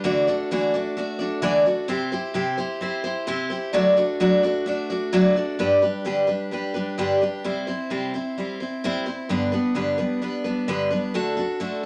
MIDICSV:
0, 0, Header, 1, 2, 480
1, 0, Start_track
1, 0, Key_signature, 1, "major"
1, 0, Tempo, 462250
1, 47, Time_signature, 4, 2, 24, 8
1, 12311, End_track
2, 0, Start_track
2, 0, Title_t, "Steel-string acoustic guitar"
2, 0, Program_c, 0, 25
2, 38, Note_on_c, 0, 50, 82
2, 41, Note_on_c, 0, 52, 87
2, 44, Note_on_c, 0, 57, 88
2, 49, Note_on_c, 0, 62, 92
2, 50, Note_on_c, 0, 66, 93
2, 54, Note_on_c, 0, 74, 101
2, 270, Note_off_c, 0, 74, 0
2, 280, Note_off_c, 0, 66, 0
2, 282, Note_off_c, 0, 50, 0
2, 283, Note_on_c, 0, 74, 58
2, 284, Note_off_c, 0, 52, 0
2, 285, Note_off_c, 0, 57, 0
2, 287, Note_off_c, 0, 62, 0
2, 292, Note_on_c, 0, 66, 64
2, 302, Note_on_c, 0, 62, 60
2, 304, Note_on_c, 0, 57, 51
2, 524, Note_off_c, 0, 74, 0
2, 526, Note_off_c, 0, 62, 0
2, 528, Note_off_c, 0, 57, 0
2, 529, Note_off_c, 0, 66, 0
2, 530, Note_on_c, 0, 50, 74
2, 534, Note_on_c, 0, 52, 72
2, 538, Note_on_c, 0, 62, 97
2, 540, Note_on_c, 0, 57, 78
2, 542, Note_on_c, 0, 66, 84
2, 542, Note_on_c, 0, 74, 93
2, 753, Note_off_c, 0, 74, 0
2, 760, Note_off_c, 0, 66, 0
2, 766, Note_off_c, 0, 62, 0
2, 766, Note_on_c, 0, 74, 60
2, 768, Note_off_c, 0, 50, 0
2, 770, Note_off_c, 0, 52, 0
2, 772, Note_on_c, 0, 66, 55
2, 773, Note_off_c, 0, 57, 0
2, 779, Note_on_c, 0, 62, 56
2, 787, Note_on_c, 0, 57, 49
2, 991, Note_off_c, 0, 57, 0
2, 1000, Note_off_c, 0, 62, 0
2, 1004, Note_on_c, 0, 57, 65
2, 1006, Note_off_c, 0, 74, 0
2, 1009, Note_off_c, 0, 66, 0
2, 1013, Note_on_c, 0, 62, 57
2, 1020, Note_on_c, 0, 66, 67
2, 1029, Note_on_c, 0, 74, 76
2, 1222, Note_off_c, 0, 74, 0
2, 1234, Note_on_c, 0, 74, 62
2, 1236, Note_off_c, 0, 66, 0
2, 1240, Note_off_c, 0, 62, 0
2, 1245, Note_off_c, 0, 57, 0
2, 1249, Note_on_c, 0, 66, 58
2, 1253, Note_on_c, 0, 62, 55
2, 1260, Note_on_c, 0, 57, 52
2, 1467, Note_off_c, 0, 57, 0
2, 1470, Note_off_c, 0, 62, 0
2, 1473, Note_off_c, 0, 66, 0
2, 1473, Note_on_c, 0, 50, 97
2, 1475, Note_on_c, 0, 52, 97
2, 1476, Note_off_c, 0, 74, 0
2, 1480, Note_on_c, 0, 57, 86
2, 1483, Note_on_c, 0, 62, 98
2, 1485, Note_on_c, 0, 66, 92
2, 1489, Note_on_c, 0, 74, 103
2, 1708, Note_off_c, 0, 74, 0
2, 1714, Note_off_c, 0, 66, 0
2, 1720, Note_off_c, 0, 50, 0
2, 1720, Note_off_c, 0, 52, 0
2, 1721, Note_on_c, 0, 74, 57
2, 1723, Note_off_c, 0, 57, 0
2, 1724, Note_off_c, 0, 62, 0
2, 1727, Note_on_c, 0, 66, 51
2, 1738, Note_on_c, 0, 62, 47
2, 1743, Note_on_c, 0, 57, 49
2, 1953, Note_on_c, 0, 48, 96
2, 1955, Note_off_c, 0, 57, 0
2, 1957, Note_off_c, 0, 62, 0
2, 1959, Note_on_c, 0, 60, 89
2, 1961, Note_on_c, 0, 64, 85
2, 1963, Note_off_c, 0, 74, 0
2, 1964, Note_off_c, 0, 66, 0
2, 1968, Note_on_c, 0, 67, 96
2, 1970, Note_on_c, 0, 72, 96
2, 2187, Note_off_c, 0, 72, 0
2, 2198, Note_off_c, 0, 67, 0
2, 2199, Note_off_c, 0, 48, 0
2, 2199, Note_on_c, 0, 72, 61
2, 2202, Note_off_c, 0, 60, 0
2, 2203, Note_off_c, 0, 64, 0
2, 2211, Note_on_c, 0, 67, 57
2, 2221, Note_on_c, 0, 64, 47
2, 2429, Note_off_c, 0, 67, 0
2, 2430, Note_off_c, 0, 64, 0
2, 2431, Note_on_c, 0, 48, 73
2, 2433, Note_off_c, 0, 72, 0
2, 2436, Note_on_c, 0, 60, 76
2, 2441, Note_on_c, 0, 67, 82
2, 2442, Note_on_c, 0, 64, 87
2, 2446, Note_on_c, 0, 72, 82
2, 2662, Note_off_c, 0, 72, 0
2, 2673, Note_off_c, 0, 67, 0
2, 2675, Note_on_c, 0, 72, 58
2, 2678, Note_off_c, 0, 48, 0
2, 2680, Note_off_c, 0, 60, 0
2, 2684, Note_off_c, 0, 64, 0
2, 2686, Note_on_c, 0, 67, 60
2, 2698, Note_on_c, 0, 64, 45
2, 2914, Note_off_c, 0, 64, 0
2, 2916, Note_on_c, 0, 60, 59
2, 2920, Note_off_c, 0, 67, 0
2, 2920, Note_off_c, 0, 72, 0
2, 2926, Note_on_c, 0, 64, 69
2, 2932, Note_on_c, 0, 67, 69
2, 2940, Note_on_c, 0, 72, 66
2, 3142, Note_off_c, 0, 72, 0
2, 3154, Note_on_c, 0, 72, 64
2, 3155, Note_off_c, 0, 67, 0
2, 3160, Note_off_c, 0, 60, 0
2, 3166, Note_off_c, 0, 64, 0
2, 3168, Note_on_c, 0, 67, 56
2, 3179, Note_on_c, 0, 64, 51
2, 3389, Note_off_c, 0, 64, 0
2, 3394, Note_on_c, 0, 48, 84
2, 3396, Note_off_c, 0, 67, 0
2, 3396, Note_off_c, 0, 72, 0
2, 3398, Note_on_c, 0, 60, 89
2, 3401, Note_on_c, 0, 64, 95
2, 3408, Note_on_c, 0, 72, 104
2, 3409, Note_on_c, 0, 67, 101
2, 3621, Note_off_c, 0, 72, 0
2, 3633, Note_off_c, 0, 67, 0
2, 3633, Note_on_c, 0, 72, 54
2, 3639, Note_off_c, 0, 48, 0
2, 3641, Note_off_c, 0, 60, 0
2, 3643, Note_off_c, 0, 64, 0
2, 3646, Note_on_c, 0, 67, 50
2, 3661, Note_on_c, 0, 64, 48
2, 3871, Note_on_c, 0, 50, 82
2, 3877, Note_on_c, 0, 54, 91
2, 3879, Note_off_c, 0, 72, 0
2, 3881, Note_on_c, 0, 57, 87
2, 3882, Note_off_c, 0, 64, 0
2, 3883, Note_off_c, 0, 67, 0
2, 3886, Note_on_c, 0, 62, 98
2, 3887, Note_on_c, 0, 66, 91
2, 3889, Note_on_c, 0, 74, 89
2, 4107, Note_off_c, 0, 74, 0
2, 4114, Note_off_c, 0, 66, 0
2, 4117, Note_off_c, 0, 50, 0
2, 4119, Note_on_c, 0, 74, 60
2, 4120, Note_off_c, 0, 62, 0
2, 4121, Note_off_c, 0, 54, 0
2, 4123, Note_off_c, 0, 57, 0
2, 4126, Note_on_c, 0, 66, 61
2, 4133, Note_on_c, 0, 62, 58
2, 4140, Note_on_c, 0, 57, 53
2, 4353, Note_off_c, 0, 57, 0
2, 4358, Note_off_c, 0, 62, 0
2, 4359, Note_off_c, 0, 66, 0
2, 4361, Note_on_c, 0, 50, 83
2, 4362, Note_off_c, 0, 74, 0
2, 4366, Note_on_c, 0, 54, 84
2, 4366, Note_on_c, 0, 57, 78
2, 4371, Note_on_c, 0, 62, 84
2, 4371, Note_on_c, 0, 66, 95
2, 4376, Note_on_c, 0, 74, 84
2, 4588, Note_off_c, 0, 74, 0
2, 4599, Note_off_c, 0, 66, 0
2, 4600, Note_on_c, 0, 74, 61
2, 4602, Note_off_c, 0, 62, 0
2, 4603, Note_off_c, 0, 50, 0
2, 4605, Note_off_c, 0, 54, 0
2, 4605, Note_off_c, 0, 57, 0
2, 4611, Note_on_c, 0, 66, 58
2, 4615, Note_on_c, 0, 62, 53
2, 4625, Note_on_c, 0, 57, 50
2, 4825, Note_off_c, 0, 57, 0
2, 4838, Note_on_c, 0, 57, 69
2, 4840, Note_off_c, 0, 62, 0
2, 4842, Note_off_c, 0, 74, 0
2, 4843, Note_off_c, 0, 66, 0
2, 4852, Note_on_c, 0, 62, 75
2, 4855, Note_on_c, 0, 66, 68
2, 4863, Note_on_c, 0, 74, 75
2, 5074, Note_off_c, 0, 74, 0
2, 5081, Note_off_c, 0, 57, 0
2, 5081, Note_off_c, 0, 66, 0
2, 5086, Note_on_c, 0, 74, 65
2, 5088, Note_off_c, 0, 62, 0
2, 5093, Note_on_c, 0, 66, 53
2, 5105, Note_on_c, 0, 62, 55
2, 5109, Note_on_c, 0, 57, 50
2, 5316, Note_off_c, 0, 57, 0
2, 5321, Note_off_c, 0, 62, 0
2, 5321, Note_on_c, 0, 50, 86
2, 5324, Note_off_c, 0, 66, 0
2, 5325, Note_off_c, 0, 74, 0
2, 5325, Note_on_c, 0, 54, 94
2, 5328, Note_on_c, 0, 57, 103
2, 5334, Note_on_c, 0, 62, 95
2, 5336, Note_on_c, 0, 66, 100
2, 5341, Note_on_c, 0, 74, 97
2, 5553, Note_off_c, 0, 74, 0
2, 5561, Note_off_c, 0, 66, 0
2, 5563, Note_off_c, 0, 50, 0
2, 5565, Note_off_c, 0, 54, 0
2, 5565, Note_on_c, 0, 74, 55
2, 5566, Note_off_c, 0, 57, 0
2, 5569, Note_off_c, 0, 62, 0
2, 5574, Note_on_c, 0, 66, 56
2, 5580, Note_on_c, 0, 62, 49
2, 5584, Note_on_c, 0, 57, 43
2, 5798, Note_off_c, 0, 62, 0
2, 5802, Note_on_c, 0, 43, 77
2, 5805, Note_off_c, 0, 57, 0
2, 5805, Note_off_c, 0, 74, 0
2, 5805, Note_on_c, 0, 50, 77
2, 5807, Note_off_c, 0, 66, 0
2, 5809, Note_on_c, 0, 55, 72
2, 5810, Note_on_c, 0, 62, 85
2, 5812, Note_on_c, 0, 67, 80
2, 5815, Note_on_c, 0, 71, 82
2, 6032, Note_off_c, 0, 71, 0
2, 6041, Note_off_c, 0, 67, 0
2, 6044, Note_off_c, 0, 43, 0
2, 6044, Note_on_c, 0, 71, 58
2, 6045, Note_off_c, 0, 50, 0
2, 6047, Note_off_c, 0, 55, 0
2, 6048, Note_off_c, 0, 62, 0
2, 6053, Note_on_c, 0, 67, 49
2, 6060, Note_on_c, 0, 62, 49
2, 6067, Note_on_c, 0, 55, 41
2, 6277, Note_off_c, 0, 62, 0
2, 6278, Note_off_c, 0, 55, 0
2, 6278, Note_on_c, 0, 43, 72
2, 6281, Note_off_c, 0, 67, 0
2, 6285, Note_off_c, 0, 71, 0
2, 6285, Note_on_c, 0, 50, 66
2, 6289, Note_on_c, 0, 62, 74
2, 6290, Note_on_c, 0, 55, 63
2, 6294, Note_on_c, 0, 67, 74
2, 6297, Note_on_c, 0, 71, 78
2, 6498, Note_off_c, 0, 71, 0
2, 6510, Note_off_c, 0, 67, 0
2, 6511, Note_on_c, 0, 71, 53
2, 6518, Note_off_c, 0, 62, 0
2, 6521, Note_off_c, 0, 55, 0
2, 6522, Note_off_c, 0, 43, 0
2, 6523, Note_on_c, 0, 67, 47
2, 6525, Note_off_c, 0, 50, 0
2, 6530, Note_on_c, 0, 62, 45
2, 6533, Note_on_c, 0, 55, 38
2, 6751, Note_off_c, 0, 55, 0
2, 6759, Note_off_c, 0, 71, 0
2, 6760, Note_off_c, 0, 62, 0
2, 6763, Note_on_c, 0, 55, 53
2, 6764, Note_off_c, 0, 67, 0
2, 6773, Note_on_c, 0, 62, 54
2, 6781, Note_on_c, 0, 67, 57
2, 6785, Note_on_c, 0, 71, 64
2, 6987, Note_off_c, 0, 71, 0
2, 6999, Note_off_c, 0, 67, 0
2, 7000, Note_on_c, 0, 71, 51
2, 7005, Note_off_c, 0, 55, 0
2, 7010, Note_off_c, 0, 62, 0
2, 7012, Note_on_c, 0, 67, 48
2, 7021, Note_on_c, 0, 62, 50
2, 7023, Note_on_c, 0, 55, 46
2, 7242, Note_off_c, 0, 55, 0
2, 7243, Note_off_c, 0, 71, 0
2, 7245, Note_off_c, 0, 62, 0
2, 7245, Note_on_c, 0, 43, 76
2, 7247, Note_off_c, 0, 67, 0
2, 7249, Note_on_c, 0, 50, 74
2, 7254, Note_on_c, 0, 55, 86
2, 7257, Note_on_c, 0, 62, 83
2, 7259, Note_on_c, 0, 67, 88
2, 7261, Note_on_c, 0, 71, 91
2, 7478, Note_off_c, 0, 71, 0
2, 7485, Note_off_c, 0, 67, 0
2, 7486, Note_off_c, 0, 43, 0
2, 7488, Note_off_c, 0, 50, 0
2, 7490, Note_on_c, 0, 71, 46
2, 7491, Note_off_c, 0, 55, 0
2, 7492, Note_off_c, 0, 62, 0
2, 7497, Note_on_c, 0, 67, 45
2, 7506, Note_on_c, 0, 62, 41
2, 7510, Note_on_c, 0, 55, 41
2, 7718, Note_off_c, 0, 55, 0
2, 7728, Note_on_c, 0, 48, 70
2, 7729, Note_off_c, 0, 71, 0
2, 7731, Note_on_c, 0, 55, 78
2, 7732, Note_off_c, 0, 62, 0
2, 7732, Note_off_c, 0, 67, 0
2, 7736, Note_on_c, 0, 60, 74
2, 7740, Note_on_c, 0, 72, 81
2, 7741, Note_on_c, 0, 64, 79
2, 7952, Note_off_c, 0, 72, 0
2, 7961, Note_off_c, 0, 64, 0
2, 7964, Note_on_c, 0, 72, 54
2, 7968, Note_off_c, 0, 48, 0
2, 7969, Note_off_c, 0, 55, 0
2, 7972, Note_off_c, 0, 60, 0
2, 7974, Note_on_c, 0, 64, 54
2, 7986, Note_on_c, 0, 60, 45
2, 8200, Note_off_c, 0, 60, 0
2, 8201, Note_off_c, 0, 64, 0
2, 8205, Note_on_c, 0, 48, 68
2, 8206, Note_off_c, 0, 72, 0
2, 8212, Note_on_c, 0, 60, 71
2, 8213, Note_on_c, 0, 55, 69
2, 8214, Note_on_c, 0, 64, 73
2, 8221, Note_on_c, 0, 72, 68
2, 8438, Note_off_c, 0, 72, 0
2, 8447, Note_off_c, 0, 48, 0
2, 8450, Note_off_c, 0, 60, 0
2, 8450, Note_on_c, 0, 72, 51
2, 8451, Note_off_c, 0, 55, 0
2, 8451, Note_off_c, 0, 64, 0
2, 8462, Note_on_c, 0, 64, 49
2, 8471, Note_on_c, 0, 60, 42
2, 8690, Note_off_c, 0, 72, 0
2, 8694, Note_off_c, 0, 60, 0
2, 8696, Note_off_c, 0, 64, 0
2, 8698, Note_on_c, 0, 55, 55
2, 8707, Note_on_c, 0, 60, 56
2, 8715, Note_on_c, 0, 64, 60
2, 8722, Note_on_c, 0, 72, 57
2, 8919, Note_off_c, 0, 72, 0
2, 8932, Note_on_c, 0, 72, 52
2, 8934, Note_off_c, 0, 55, 0
2, 8938, Note_off_c, 0, 60, 0
2, 8938, Note_off_c, 0, 64, 0
2, 8950, Note_on_c, 0, 64, 44
2, 8957, Note_on_c, 0, 60, 48
2, 9171, Note_off_c, 0, 72, 0
2, 9176, Note_off_c, 0, 60, 0
2, 9179, Note_on_c, 0, 48, 80
2, 9180, Note_off_c, 0, 64, 0
2, 9182, Note_on_c, 0, 55, 83
2, 9188, Note_on_c, 0, 60, 91
2, 9192, Note_on_c, 0, 64, 92
2, 9192, Note_on_c, 0, 72, 91
2, 9395, Note_off_c, 0, 72, 0
2, 9404, Note_off_c, 0, 64, 0
2, 9408, Note_on_c, 0, 72, 49
2, 9414, Note_off_c, 0, 48, 0
2, 9416, Note_off_c, 0, 55, 0
2, 9416, Note_off_c, 0, 60, 0
2, 9416, Note_on_c, 0, 64, 47
2, 9429, Note_on_c, 0, 60, 39
2, 9649, Note_off_c, 0, 72, 0
2, 9649, Note_on_c, 0, 43, 73
2, 9651, Note_on_c, 0, 50, 80
2, 9653, Note_off_c, 0, 64, 0
2, 9655, Note_on_c, 0, 55, 76
2, 9656, Note_off_c, 0, 60, 0
2, 9660, Note_on_c, 0, 59, 78
2, 9663, Note_on_c, 0, 62, 80
2, 9665, Note_on_c, 0, 71, 83
2, 9872, Note_off_c, 0, 71, 0
2, 9882, Note_off_c, 0, 62, 0
2, 9884, Note_on_c, 0, 71, 57
2, 9890, Note_off_c, 0, 43, 0
2, 9890, Note_off_c, 0, 59, 0
2, 9891, Note_off_c, 0, 50, 0
2, 9893, Note_off_c, 0, 55, 0
2, 9895, Note_on_c, 0, 62, 49
2, 9902, Note_on_c, 0, 59, 52
2, 9904, Note_on_c, 0, 55, 45
2, 10114, Note_off_c, 0, 55, 0
2, 10120, Note_off_c, 0, 59, 0
2, 10120, Note_on_c, 0, 43, 64
2, 10122, Note_off_c, 0, 62, 0
2, 10125, Note_off_c, 0, 71, 0
2, 10126, Note_on_c, 0, 50, 67
2, 10127, Note_on_c, 0, 55, 68
2, 10132, Note_on_c, 0, 59, 76
2, 10134, Note_on_c, 0, 62, 77
2, 10137, Note_on_c, 0, 71, 83
2, 10347, Note_off_c, 0, 71, 0
2, 10358, Note_off_c, 0, 62, 0
2, 10360, Note_on_c, 0, 71, 52
2, 10363, Note_off_c, 0, 59, 0
2, 10365, Note_off_c, 0, 43, 0
2, 10368, Note_off_c, 0, 50, 0
2, 10369, Note_off_c, 0, 55, 0
2, 10370, Note_on_c, 0, 62, 49
2, 10375, Note_on_c, 0, 59, 41
2, 10382, Note_on_c, 0, 55, 42
2, 10596, Note_off_c, 0, 55, 0
2, 10603, Note_off_c, 0, 59, 0
2, 10605, Note_off_c, 0, 71, 0
2, 10608, Note_on_c, 0, 55, 53
2, 10611, Note_off_c, 0, 62, 0
2, 10615, Note_on_c, 0, 59, 57
2, 10623, Note_on_c, 0, 62, 63
2, 10631, Note_on_c, 0, 71, 62
2, 10831, Note_off_c, 0, 71, 0
2, 10838, Note_off_c, 0, 62, 0
2, 10843, Note_on_c, 0, 71, 49
2, 10848, Note_off_c, 0, 59, 0
2, 10850, Note_off_c, 0, 55, 0
2, 10850, Note_on_c, 0, 62, 52
2, 10860, Note_on_c, 0, 59, 43
2, 10868, Note_on_c, 0, 55, 46
2, 11086, Note_off_c, 0, 55, 0
2, 11087, Note_off_c, 0, 59, 0
2, 11087, Note_off_c, 0, 71, 0
2, 11088, Note_off_c, 0, 62, 0
2, 11088, Note_on_c, 0, 43, 73
2, 11090, Note_on_c, 0, 50, 90
2, 11098, Note_on_c, 0, 55, 83
2, 11099, Note_on_c, 0, 59, 87
2, 11100, Note_on_c, 0, 62, 83
2, 11107, Note_on_c, 0, 71, 94
2, 11311, Note_off_c, 0, 71, 0
2, 11322, Note_off_c, 0, 62, 0
2, 11324, Note_on_c, 0, 71, 49
2, 11328, Note_off_c, 0, 59, 0
2, 11330, Note_off_c, 0, 43, 0
2, 11330, Note_off_c, 0, 50, 0
2, 11334, Note_off_c, 0, 55, 0
2, 11334, Note_on_c, 0, 62, 44
2, 11341, Note_on_c, 0, 59, 41
2, 11346, Note_on_c, 0, 55, 42
2, 11564, Note_off_c, 0, 62, 0
2, 11567, Note_off_c, 0, 71, 0
2, 11568, Note_on_c, 0, 50, 70
2, 11569, Note_off_c, 0, 55, 0
2, 11572, Note_off_c, 0, 59, 0
2, 11573, Note_on_c, 0, 57, 75
2, 11577, Note_on_c, 0, 62, 86
2, 11579, Note_on_c, 0, 66, 77
2, 11580, Note_on_c, 0, 69, 83
2, 11791, Note_off_c, 0, 69, 0
2, 11801, Note_off_c, 0, 66, 0
2, 11804, Note_on_c, 0, 69, 53
2, 11809, Note_off_c, 0, 50, 0
2, 11812, Note_off_c, 0, 57, 0
2, 11813, Note_on_c, 0, 66, 47
2, 11814, Note_off_c, 0, 62, 0
2, 11825, Note_on_c, 0, 62, 47
2, 12040, Note_off_c, 0, 62, 0
2, 12044, Note_off_c, 0, 66, 0
2, 12045, Note_on_c, 0, 50, 74
2, 12047, Note_off_c, 0, 69, 0
2, 12051, Note_on_c, 0, 57, 80
2, 12052, Note_on_c, 0, 62, 63
2, 12056, Note_on_c, 0, 66, 83
2, 12063, Note_on_c, 0, 69, 73
2, 12275, Note_off_c, 0, 69, 0
2, 12288, Note_off_c, 0, 50, 0
2, 12288, Note_off_c, 0, 66, 0
2, 12291, Note_off_c, 0, 57, 0
2, 12291, Note_off_c, 0, 62, 0
2, 12311, End_track
0, 0, End_of_file